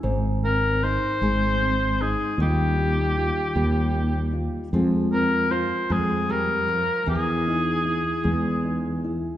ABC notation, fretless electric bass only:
X:1
M:6/8
L:1/8
Q:3/8=51
K:Ab
V:1 name="Fretless electric bass" clef=bass
A,,,3 A,,,3 | E,,3 E,,3 | F,,3 F,,3 | =E,,3 E,,3 |]